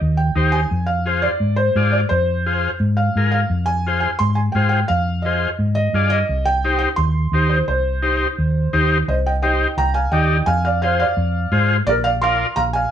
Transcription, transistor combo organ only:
0, 0, Header, 1, 2, 480
1, 0, Start_track
1, 0, Key_signature, -3, "minor"
1, 0, Tempo, 348837
1, 976, Time_signature, 4, 2, 24, 8
1, 17767, End_track
2, 0, Start_track
2, 0, Title_t, "Transistor combo organ"
2, 0, Program_c, 0, 18
2, 488, Note_on_c, 0, 63, 61
2, 497, Note_on_c, 0, 67, 69
2, 506, Note_on_c, 0, 72, 77
2, 828, Note_off_c, 0, 63, 0
2, 832, Note_off_c, 0, 67, 0
2, 837, Note_off_c, 0, 72, 0
2, 1453, Note_on_c, 0, 65, 67
2, 1461, Note_on_c, 0, 68, 54
2, 1473, Note_on_c, 0, 72, 77
2, 1791, Note_off_c, 0, 65, 0
2, 1795, Note_off_c, 0, 68, 0
2, 1801, Note_off_c, 0, 72, 0
2, 2423, Note_on_c, 0, 68, 64
2, 2426, Note_on_c, 0, 65, 75
2, 2436, Note_on_c, 0, 74, 79
2, 2756, Note_off_c, 0, 68, 0
2, 2757, Note_off_c, 0, 65, 0
2, 2763, Note_off_c, 0, 74, 0
2, 3390, Note_on_c, 0, 68, 58
2, 3391, Note_on_c, 0, 65, 64
2, 3401, Note_on_c, 0, 72, 73
2, 3719, Note_off_c, 0, 68, 0
2, 3720, Note_off_c, 0, 65, 0
2, 3725, Note_off_c, 0, 72, 0
2, 4359, Note_on_c, 0, 65, 65
2, 4362, Note_on_c, 0, 68, 56
2, 4367, Note_on_c, 0, 70, 70
2, 4684, Note_off_c, 0, 65, 0
2, 4686, Note_off_c, 0, 68, 0
2, 4688, Note_off_c, 0, 70, 0
2, 5320, Note_on_c, 0, 65, 71
2, 5330, Note_on_c, 0, 68, 56
2, 5332, Note_on_c, 0, 72, 71
2, 5645, Note_off_c, 0, 65, 0
2, 5650, Note_off_c, 0, 68, 0
2, 5651, Note_off_c, 0, 72, 0
2, 6262, Note_on_c, 0, 65, 76
2, 6270, Note_on_c, 0, 68, 62
2, 6277, Note_on_c, 0, 72, 81
2, 6596, Note_off_c, 0, 65, 0
2, 6600, Note_off_c, 0, 68, 0
2, 6603, Note_off_c, 0, 72, 0
2, 7228, Note_on_c, 0, 65, 57
2, 7237, Note_on_c, 0, 68, 61
2, 7238, Note_on_c, 0, 72, 71
2, 7559, Note_off_c, 0, 65, 0
2, 7563, Note_off_c, 0, 68, 0
2, 7564, Note_off_c, 0, 72, 0
2, 8179, Note_on_c, 0, 65, 78
2, 8187, Note_on_c, 0, 68, 63
2, 8191, Note_on_c, 0, 74, 86
2, 8515, Note_off_c, 0, 65, 0
2, 8519, Note_off_c, 0, 68, 0
2, 8521, Note_off_c, 0, 74, 0
2, 9144, Note_on_c, 0, 63, 66
2, 9146, Note_on_c, 0, 67, 63
2, 9155, Note_on_c, 0, 72, 80
2, 9478, Note_off_c, 0, 63, 0
2, 9479, Note_off_c, 0, 67, 0
2, 9484, Note_off_c, 0, 72, 0
2, 10093, Note_on_c, 0, 63, 65
2, 10100, Note_on_c, 0, 67, 62
2, 10111, Note_on_c, 0, 72, 71
2, 10433, Note_off_c, 0, 63, 0
2, 10437, Note_off_c, 0, 67, 0
2, 10442, Note_off_c, 0, 72, 0
2, 11040, Note_on_c, 0, 63, 60
2, 11042, Note_on_c, 0, 67, 51
2, 11050, Note_on_c, 0, 72, 76
2, 11387, Note_off_c, 0, 63, 0
2, 11388, Note_off_c, 0, 67, 0
2, 11392, Note_off_c, 0, 72, 0
2, 12014, Note_on_c, 0, 63, 71
2, 12017, Note_on_c, 0, 67, 80
2, 12017, Note_on_c, 0, 72, 96
2, 12354, Note_off_c, 0, 63, 0
2, 12355, Note_off_c, 0, 67, 0
2, 12356, Note_off_c, 0, 72, 0
2, 12973, Note_on_c, 0, 63, 68
2, 12977, Note_on_c, 0, 72, 72
2, 12980, Note_on_c, 0, 67, 55
2, 13313, Note_off_c, 0, 63, 0
2, 13315, Note_off_c, 0, 72, 0
2, 13317, Note_off_c, 0, 67, 0
2, 13933, Note_on_c, 0, 63, 69
2, 13939, Note_on_c, 0, 67, 58
2, 13945, Note_on_c, 0, 74, 82
2, 14273, Note_off_c, 0, 63, 0
2, 14276, Note_off_c, 0, 67, 0
2, 14279, Note_off_c, 0, 74, 0
2, 14903, Note_on_c, 0, 68, 59
2, 14905, Note_on_c, 0, 65, 59
2, 14909, Note_on_c, 0, 72, 65
2, 15237, Note_off_c, 0, 68, 0
2, 15238, Note_off_c, 0, 65, 0
2, 15240, Note_off_c, 0, 72, 0
2, 15847, Note_on_c, 0, 65, 81
2, 15856, Note_on_c, 0, 68, 82
2, 15860, Note_on_c, 0, 72, 96
2, 16188, Note_off_c, 0, 65, 0
2, 16193, Note_off_c, 0, 68, 0
2, 16195, Note_off_c, 0, 72, 0
2, 16821, Note_on_c, 0, 70, 67
2, 16823, Note_on_c, 0, 65, 70
2, 16828, Note_on_c, 0, 74, 77
2, 17154, Note_off_c, 0, 70, 0
2, 17155, Note_off_c, 0, 65, 0
2, 17157, Note_off_c, 0, 74, 0
2, 17767, End_track
0, 0, End_of_file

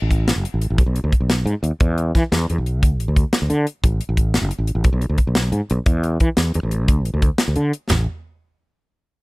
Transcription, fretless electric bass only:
0, 0, Header, 1, 2, 480
1, 0, Start_track
1, 0, Tempo, 338600
1, 2556, Time_signature, 12, 3, 24, 8
1, 13076, End_track
2, 0, Start_track
2, 0, Title_t, "Fretless electric bass"
2, 0, Program_c, 0, 35
2, 28, Note_on_c, 0, 33, 89
2, 461, Note_off_c, 0, 33, 0
2, 510, Note_on_c, 0, 30, 72
2, 618, Note_off_c, 0, 30, 0
2, 763, Note_on_c, 0, 33, 76
2, 974, Note_off_c, 0, 33, 0
2, 997, Note_on_c, 0, 33, 81
2, 1100, Note_off_c, 0, 33, 0
2, 1109, Note_on_c, 0, 35, 95
2, 1216, Note_off_c, 0, 35, 0
2, 1224, Note_on_c, 0, 35, 84
2, 1444, Note_off_c, 0, 35, 0
2, 1472, Note_on_c, 0, 38, 85
2, 1581, Note_off_c, 0, 38, 0
2, 1708, Note_on_c, 0, 35, 80
2, 2035, Note_off_c, 0, 35, 0
2, 2063, Note_on_c, 0, 44, 99
2, 2177, Note_off_c, 0, 44, 0
2, 2306, Note_on_c, 0, 39, 97
2, 2418, Note_off_c, 0, 39, 0
2, 2560, Note_on_c, 0, 40, 99
2, 2991, Note_off_c, 0, 40, 0
2, 3053, Note_on_c, 0, 52, 83
2, 3154, Note_off_c, 0, 52, 0
2, 3286, Note_on_c, 0, 40, 100
2, 3498, Note_off_c, 0, 40, 0
2, 3541, Note_on_c, 0, 40, 90
2, 3639, Note_off_c, 0, 40, 0
2, 3661, Note_on_c, 0, 35, 81
2, 4005, Note_off_c, 0, 35, 0
2, 4005, Note_on_c, 0, 38, 89
2, 4239, Note_off_c, 0, 38, 0
2, 4239, Note_on_c, 0, 33, 95
2, 4347, Note_off_c, 0, 33, 0
2, 4368, Note_on_c, 0, 38, 82
2, 4580, Note_off_c, 0, 38, 0
2, 4845, Note_on_c, 0, 38, 77
2, 4951, Note_off_c, 0, 38, 0
2, 4958, Note_on_c, 0, 50, 86
2, 5175, Note_off_c, 0, 50, 0
2, 5440, Note_on_c, 0, 33, 103
2, 5656, Note_off_c, 0, 33, 0
2, 5794, Note_on_c, 0, 33, 88
2, 6228, Note_off_c, 0, 33, 0
2, 6261, Note_on_c, 0, 30, 78
2, 6377, Note_off_c, 0, 30, 0
2, 6499, Note_on_c, 0, 33, 79
2, 6724, Note_off_c, 0, 33, 0
2, 6733, Note_on_c, 0, 33, 83
2, 6853, Note_off_c, 0, 33, 0
2, 6871, Note_on_c, 0, 35, 97
2, 6975, Note_off_c, 0, 35, 0
2, 6983, Note_on_c, 0, 35, 87
2, 7207, Note_off_c, 0, 35, 0
2, 7223, Note_on_c, 0, 38, 85
2, 7338, Note_off_c, 0, 38, 0
2, 7475, Note_on_c, 0, 35, 83
2, 7800, Note_off_c, 0, 35, 0
2, 7825, Note_on_c, 0, 44, 94
2, 7939, Note_off_c, 0, 44, 0
2, 8091, Note_on_c, 0, 35, 108
2, 8193, Note_off_c, 0, 35, 0
2, 8308, Note_on_c, 0, 40, 104
2, 8744, Note_off_c, 0, 40, 0
2, 8802, Note_on_c, 0, 52, 85
2, 8908, Note_off_c, 0, 52, 0
2, 9034, Note_on_c, 0, 40, 98
2, 9251, Note_off_c, 0, 40, 0
2, 9289, Note_on_c, 0, 40, 88
2, 9391, Note_off_c, 0, 40, 0
2, 9401, Note_on_c, 0, 33, 80
2, 9764, Note_off_c, 0, 33, 0
2, 9764, Note_on_c, 0, 38, 93
2, 9994, Note_off_c, 0, 38, 0
2, 9994, Note_on_c, 0, 33, 95
2, 10103, Note_off_c, 0, 33, 0
2, 10116, Note_on_c, 0, 38, 85
2, 10331, Note_off_c, 0, 38, 0
2, 10599, Note_on_c, 0, 38, 79
2, 10705, Note_off_c, 0, 38, 0
2, 10720, Note_on_c, 0, 50, 88
2, 10933, Note_off_c, 0, 50, 0
2, 11200, Note_on_c, 0, 33, 92
2, 11420, Note_off_c, 0, 33, 0
2, 13076, End_track
0, 0, End_of_file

